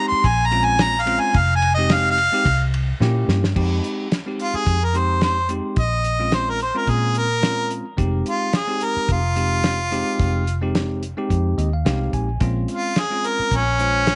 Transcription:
Already playing: G#3 C4 D#4 G4
0.08 C6, muted fingered electric bass stroke
0.24 A#1 G#5, kick, ride
0.46 A#5
0.51 G#3 C4 C#4 F4, ride
0.64 G#5
0.79 A#5, snare, ride
1.01 F5
1.06 G#3 C4 C#4 F4, ride
1.20 G#5
1.34 F1 F5, kick, ride
1.56 G#5
1.62 ride
1.75 G#3 C4 D#4 D#5
1.79 G4
1.90 F5, snare, ride
2.11 F5
2.18 ride
2.32 G#3 C4 D#4 G4
2.45 C2, kick, ride
2.74 ride
3.00 A#2 A#3 C#4 E4 G4, snare
3.28 G2, snare
3.44 snare
3.55 F2 G#3 C4 D#4 G4, kick, crash
3.84 closed hi-hat
4.12 snare, closed hi-hat
4.26 G#3 C4 D#4 G4
4.39 F4, closed hi-hat
4.54 G#4, muted fingered electric bass stroke
4.67 F2, kick, closed hi-hat
4.84 A#4
4.94 G#3 C4 D#4 G4 C5, closed hi-hat
5.21 C5, snare, closed hi-hat
5.49 G#3 C4 D#4 G4, closed hi-hat
5.76 A#1 D#5, kick, closed hi-hat
6.04 closed hi-hat
6.19 G#3 C4 C#4 F4
6.32 C5, snare, closed hi-hat
6.50 A#4
6.60 C5, closed hi-hat
6.74 G#3 C4 C#4 F4 A#4
6.87 A#2 G#4, kick, closed hi-hat
7.15 A#4, closed hi-hat
7.41 G#3 C4 C#4 F4, snare, closed hi-hat
7.70 closed hi-hat
7.97 F1 G#3 C4 D#4 G4, kick, closed hi-hat
8.26 F4, closed hi-hat
8.53 G#4, snare, closed hi-hat
8.67 G#3 C4 D#4 G4
8.81 A#4, closed hi-hat
8.96 muted fingered electric bass stroke
9.09 F1 F4, kick, closed hi-hat
9.35 G#3 C4 D#4 G4, closed hi-hat
9.64 snare, closed hi-hat
9.91 G#3 C4 D#4 G4, closed hi-hat
10.19 F1, kick, closed hi-hat
10.47 closed hi-hat
10.61 G#3 C4 D#4 G4
10.75 snare, closed hi-hat
11.03 closed hi-hat
11.17 G#3 C4 D#4 G4
11.30 F2, kick, closed hi-hat
11.58 D#2 D#5, closed hi-hat
11.73 F5
11.85 C2 G#3 C4 D#4 G4 F5, snare, closed hi-hat
12.13 A#1 G#5, kick, closed hi-hat
12.40 A#1 G#3 C4 C#4 F4, kick, closed hi-hat
12.68 F4, closed hi-hat
12.96 G#4, snare, closed hi-hat
13.10 G#3 C4 C#4 F4
13.24 A#4, closed hi-hat
13.39 muted fingered electric bass stroke
13.51 A#1, kick, closed hi-hat
13.56 C#4
13.79 G#3 C#4 F4 C5, closed hi-hat
14.07 snare, closed hi-hat

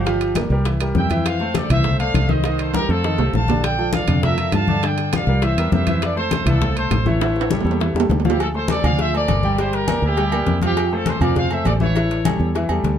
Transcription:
Already playing: G1 D4 G4
0.05 F3 F4 F5, high bongo, high conga, high timbale
0.20 high bongo, high conga, high timbale
0.35 A#3 A#4 D5, high bongo, high conga, high timbale
0.50 C2 G3 G4 A#4, high bongo, high conga
0.65 E3 E4 E5, high bongo, high conga, high timbale
0.80 G3 G4 A#4, high conga, high timbale
0.95 F2 E5 G5, high bongo, low bongo, high conga
1.10 E3 E4 E5, high bongo, high conga, high timbale
1.25 C5 F5, high bongo, high conga, high timbale
1.40 A3 A4 C5, high bongo, high conga
1.54 A4 D5, high bongo, high conga, high timbale
1.70 C2 E3 E4 C5 E5, high bongo, high conga, low conga, high timbale
1.84 A3 A4 C5, high bongo, high conga, low conga
1.99 A3 A4 C5 D5 F5, high conga, high timbale
2.14 C2, high bongo, low bongo, high conga, high timbale
2.29 D#3 D#4 C5 D#5, high bongo, high conga
2.44 D#3 D#4 D#5, high bongo, high timbale
2.59 A4 C5, high bongo, high conga, high timbale
2.74 G3 G4 A#4, high bongo, high conga, high timbale
2.89 F2 A3 F4 A4 C5, high bongo, high conga
3.04 D#3 D#4 D#5, high bongo, high conga
3.18 C2 A3 A4 C5, high conga, low timbale
3.33 A#1 F5 A5, high bongo, low bongo, high conga
3.48 D3 D4 D5, high bongo, high conga, low timbale
3.64 D5 G5, high bongo, high conga, high timbale
3.78 F3 F4 A4, high bongo, high conga
3.93 D5 F5, high bongo, high conga, high timbale
4.07 F2 D3 D4 D5, high bongo, high conga, low conga, high timbale
4.23 F3 F4 A4 A#4 E5, high bongo, high conga, low conga
4.37 F3 F4 A4, high conga, high timbale
4.52 G2 F5 A5, high bongo, low bongo, high conga, high timbale
4.68 D3 D4 D5, high bongo, high conga
4.83 D3 D4 D5 G5, high bongo, high conga, high timbale
4.98 high bongo, high conga, high timbale
5.12 F3 F4 G4 D5 F5, high bongo, high conga, high timbale
5.27 C2 G3 G4 A#4, high bongo, high conga
5.42 E3 E4 C5 E5, high bongo, high conga, high timbale
5.57 E2 G3 G4 A#4, high conga, high timbale
5.72 F2 C5 E5, high bongo, low bongo, high conga, low timbale
5.87 E3 E4 E5, high bongo, high conga, high timbale
6.02 A4 D5, high bongo, high conga, high timbale
6.16 A3 A4 C5, high bongo, high conga
6.31 high bongo, high conga, high timbale
6.46 C2 E3 E4 F4 A4 E5, high bongo, high conga, low conga, high timbale
6.61 A3 A4 C5, high bongo, high conga, low conga
6.76 A3 A4 C5, high conga, high timbale
6.91 A1, high bongo, low bongo, high conga, high timbale
7.06 E3 E4 A4 C#5 E5, high bongo, high conga
7.21 E3 E4 E5, high bongo, high conga, high timbale
7.36 high bongo, high conga
7.41 high timbale
7.51 G3 G4 A4, high bongo, high conga
7.61 low timbale
7.65 E2 G3 G4 A4, high bongo, high conga
7.71 low timbale
7.80 E3 E4 E5, high bongo, high conga, low timbale
7.94 E2 G3 G4 A4, high bongo
8.00 low timbale
8.09 D2, low bongo, high conga, low timbale
8.20 low timbale
8.25 F3 E4 F4 G4 F5, low bongo, high conga
8.30 low timbale
8.39 F4 A4, cowbell, high conga, low agogo
8.54 A3 A4 C5, high conga
8.68 A4 D5, cowbell, high conga, low agogo
8.84 D2 F3 F4 D5 F5, high conga, low conga, low agogo
8.99 C5 E5, cowbell, high conga
9.14 A3 A4 A#4 C5 D5, high conga, low agogo
9.28 G1, cowbell, high conga, low agogo
9.43 G3 G4 G5, high conga
9.58 G3 G4 C5 G5, cowbell, high conga, low agogo
9.73 G4 A#4, cowbell, high conga
9.88 A#3 A#4 D5, cowbell, high conga, low agogo
10.02 D2 E4 G4, high conga
10.17 G3 G4 G5, cowbell, high conga, low agogo
10.32 A#3 A#4 D5, high conga, low agogo
10.46 F2, cowbell, high conga
10.62 F3 C4 F4 G4 F5, cowbell, high conga, low agogo
10.77 cowbell, high conga, low agogo
10.91 A3 F4 A4 C5, high conga
11.06 A4 C5, cowbell, high conga, low agogo
11.21 F2 F3 F4 A#4 D5 F5, high conga, low conga, low agogo
11.36 C5 F5, cowbell, high conga, low conga
11.50 A3 A4 C5 E5, high conga, low agogo
11.65 A1 A4 D5, cowbell, high conga, low timbale, low agogo
11.80 E3 E4 A4 C#5 E5, high conga
11.95 E3 E4 E5, cowbell, high conga, low agogo
12.11 cowbell, high conga
12.25 G3 G4 A4, cowbell, high conga, low agogo
12.40 E2, high conga
12.55 E3 E4 E5, cowbell, high conga, low agogo
12.69 E2 G3 G4 A4, high conga, low agogo
12.84 D2, cowbell, high conga

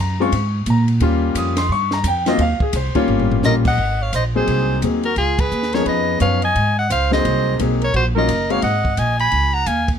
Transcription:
Already playing: F#2
0.01 A#5
0.20 G#3 C4 C#4 F4 C#6
0.32 G#2, kick, ride
0.66 A#2, kick, hi-hat pedal, ride
0.70 A#5
0.88 ride
1.00 D#2 G3 A#3 C#4 F4, kick, ride
1.35 F2 D#6, kick, hi-hat pedal, ride
1.57 C6, snare, ride
1.69 G2 C#6, kick
1.91 A#5, snare
2.04 F2 G5, kick, hi-hat pedal, ride
2.26 F#3 A#3 C4 F4 D#5, snare, ride
2.38 D#2 F5, kick, ride
2.60 G#4, muted upright bass stroke, kick
2.73 C2 C5, kick, hi-hat pedal, ride
2.95 G3 A#3 C#4 F4 C#5, muted upright bass stroke, kick, ride
3.08 G1
3.20 floor tom
3.32 floor tom
3.43 A#1 G3 A#3 C#4 F4 A#4 D#5, snare, hi-hat pedal
3.65 D#5 F#5, kick, crash
3.78 G#1, kick
4.02 C#5 F5
4.13 A#1 C5 D#5, kick, hi-hat pedal, ride
4.35 F#3 A#3 C4 D#4 G#4 C5
4.47 C2, kick, ride
4.82 D#2 F#3 A#3 C4 D#4 G#4, kick, hi-hat pedal, ride
5.03 F#4 A#4, ride
5.16 C#2 F4 G#4, kick, ride
5.39 G#4 B4, kick, ride
5.51 D#2, hi-hat pedal
5.63 snare
5.73 F3 B3 C#4 D#4 G#4 A#4 C#5, snare, ride
5.86 F2 B4 D#5, kick, ride
6.20 F#2 F3 B3 C#4 D#4 B4 C#5 F5, kick, hi-hat pedal, ride
6.42 D#5 G#5, ride
6.55 G#2, kick, ride
6.79 D#5 F#5
6.90 C#2 C5 F5, kick, hi-hat pedal, ride
7.11 F#3 A#3 C4 D#4 G#4 C5 D#5, snare
7.25 C2, kick, ride
7.59 B1 F#3 A#3 C4 D#4 G#4, kick, hi-hat pedal, ride
7.82 A#4 C#5, ride
7.94 A#1 F#4 C5, kick, ride
8.15 F#3 A#3 C#4 D#4 F4 A#4 D#5
8.29 F#1, kick, hi-hat pedal, ride
8.50 G#3 A#3 C4 D#4 F#4 C#5 F5, ride
8.62 G#1 D#5 F#5, kick, ride
8.85 kick
8.96 A#1 D#5 G#5, kick, hi-hat pedal, ride
9.19 G#5 B5, ride
9.31 C#2, kick, ride
9.54 F#5 A#5
9.66 D#2 F5 G#5, kick, hi-hat pedal, ride
9.88 kick, ride

